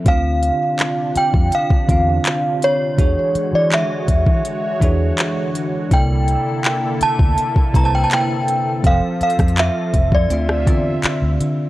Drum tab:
HH |x---x---x---x---x---x---x---x---|x---x---x---x---x---x---x---x---|x---x---x---x---x---x---x---x---|x---xxxxx---x---x---x---x---x---|
CP |--------x---------------x-------|--------x---------------x-------|--------x---------------x-------|--------x---------------x-------|
SD |--------------------------------|--------------------------------|--------------------------------|------r-----------r-------------|
BD |o-------------o---o-o-----------|o-----------o-o-----o-----------|o-------------o---o-o-----------|o-----o-----o-o-----o-----------|